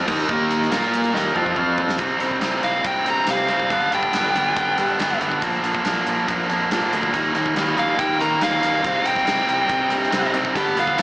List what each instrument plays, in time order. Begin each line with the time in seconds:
0.06 fingered electric bass D#2, overdriven electric guitar D#3 A#3 D#4, tonewheel organ A#3 D#4 A#4 D#5, kick, crash
0.29 fingered electric bass D#2, overdriven electric guitar D#3 A#3 D#4, kick
0.51 closed hi-hat
0.62 snare
0.71 fingered electric bass A#2, tonewheel organ A#3 F4 A#4 F5, overdriven electric guitar A#3 F4 A#4, snare, closed hi-hat
0.83 closed hi-hat
0.93 closed hi-hat
1.04 closed hi-hat
1.14 fingered electric bass D#2, overdriven electric guitar D#3 A#3 D#4, tonewheel organ A#3 D#4 A#4 D#5, snare
1.35 fingered electric bass F2, overdriven electric guitar F3 C4 F4, mid tom
1.46 kick
1.56 fingered electric bass F2, overdriven electric guitar F3 C4 F4, tonewheel organ C4 F4 C5 F5, mid tom
1.78 floor tom
1.89 snare
1.98 fingered electric bass C2, overdriven electric guitar C3 G3 C4 D#4, kick, closed hi-hat
2.19 fingered electric bass C2, overdriven electric guitar C3 G3 C4 D#4, closed hi-hat
2.31 kick
2.41 fingered electric bass C2, overdriven electric guitar C3 G3 C4 D#4, snare, closed hi-hat
2.62 fingered electric bass C2, overdriven electric guitar C3 G3 C4 D#4, lead electric guitar F5, closed hi-hat
2.83 fingered electric bass C2, overdriven electric guitar C3 G3 C4 D#4, lead electric guitar G5, kick, closed hi-hat
3.04 fingered electric bass G2, overdriven electric guitar C3 G3 C4 D#4, closed hi-hat
3.10 lead electric guitar A#5
3.26 overdriven electric guitar C3 G3 C4 D#4, fingered electric bass C3, snare, closed hi-hat
3.30 lead electric guitar F5
3.48 fingered electric bass C2, overdriven electric guitar C3 G3 C4 D#4, closed hi-hat
3.60 kick
3.69 fingered electric bass G1, overdriven electric guitar G2 D3 G3 B3 D4, kick, closed hi-hat
3.91 fingered electric bass G1, overdriven electric guitar G2 D3 G3 B3 D4, lead electric guitar G5, closed hi-hat
4.03 kick
4.13 fingered electric bass G1, overdriven electric guitar G2 D3 G3 B3 D4, snare, closed hi-hat
4.34 fingered electric bass G1, overdriven electric guitar G2 D3 G3 B3 D4, closed hi-hat
4.55 fingered electric bass G1, overdriven electric guitar G2 D3 G3 B3 D4, kick, closed hi-hat
4.77 overdriven electric guitar G2 D3 G3 B3 D4, fingered electric bass G2, closed hi-hat
4.98 fingered electric bass G1, overdriven electric guitar G2 D3 G3 B3 D4, snare, closed hi-hat
5.20 fingered electric bass G1, overdriven electric guitar G2 D3 G3 B3 D4, closed hi-hat
5.32 kick
5.42 fingered electric bass A#1, overdriven electric guitar A#2 D3 F3 A#3 D4, kick, closed hi-hat
5.63 fingered electric bass A#1, overdriven electric guitar A#2 D3 F3 A#3 D4, closed hi-hat
5.75 kick
5.84 fingered electric bass A#1, overdriven electric guitar A#2 D3 F3 A#3 D4, snare, closed hi-hat
6.06 fingered electric bass A#1, overdriven electric guitar A#2 D3 F3 A#3 D4, closed hi-hat
6.26 fingered electric bass A#1, overdriven electric guitar A#2 D3 F3 A#3 D4, kick, closed hi-hat
6.48 fingered electric bass F2, overdriven electric guitar A#2 D3 F3 A#3 D4, closed hi-hat
6.69 overdriven electric guitar A#2 D3 F3 A#3 D4, fingered electric bass A#2, snare, closed hi-hat
6.90 fingered electric bass D2, overdriven electric guitar A#2 D3 F3 A#3 D4, closed hi-hat
7.03 kick
7.12 fingered electric bass D#2, overdriven electric guitar D#3 G3 A#3 D#4, kick, closed hi-hat
7.33 fingered electric bass D#2, overdriven electric guitar D#3 G3 A#3 D#4, closed hi-hat
7.46 kick
7.55 fingered electric bass D#2, overdriven electric guitar D#3 G3 A#3 D#4, snare, closed hi-hat
7.76 fingered electric bass D#2, overdriven electric guitar D#3 G3 A#3 D#4, lead electric guitar F5, closed hi-hat
7.97 fingered electric bass D#2, overdriven electric guitar D#3 G3 A#3 D#4, lead electric guitar G5, kick, closed hi-hat
8.17 overdriven electric guitar D#3 G3 A#3 D#4, fingered electric bass D#3, lead electric guitar A#5, closed hi-hat
8.40 fingered electric bass D#2, overdriven electric guitar D#3 G3 A#3 D#4, lead electric guitar F5, snare, closed hi-hat
8.61 fingered electric bass D#2, overdriven electric guitar D#3 G3 A#3 D#4, closed hi-hat
8.83 fingered electric bass C2, overdriven electric guitar C3 G3 C4 D#4, tonewheel organ D#4 G4 C5 D#5, kick, closed hi-hat
9.04 fingered electric bass C2, overdriven electric guitar C3 G3 C4 D#4, lead electric guitar G5, closed hi-hat
9.16 kick, snare
9.25 fingered electric bass C2, overdriven electric guitar C3 G3 C4 D#4, snare, closed hi-hat
9.46 fingered electric bass C2, overdriven electric guitar C3 G3 C4 D#4, closed hi-hat
9.68 fingered electric bass C2, overdriven electric guitar C3 G3 C4 D#4, kick, closed hi-hat
9.89 fingered electric bass G2, overdriven electric guitar C3 G3 C4 D#4, closed hi-hat
10.03 snare
10.11 overdriven electric guitar C3 G3 C4 D#4, fingered electric bass C3, snare, closed hi-hat
10.32 fingered electric bass C2, overdriven electric guitar C3 G3 C4 D#4, closed hi-hat
10.45 kick
10.54 fingered electric bass G1, overdriven electric guitar G2 D3 G3 B3 D4, tonewheel organ D4 G4 B4 D5, lead electric guitar G4, kick, closed hi-hat
10.75 fingered electric bass G1, overdriven electric guitar G2 D3 G3 B3 D4, closed hi-hat
10.79 lead electric guitar F5
10.87 kick
10.97 fingered electric bass G1, overdriven electric guitar G2 D3 G3 B3 D4, closed hi-hat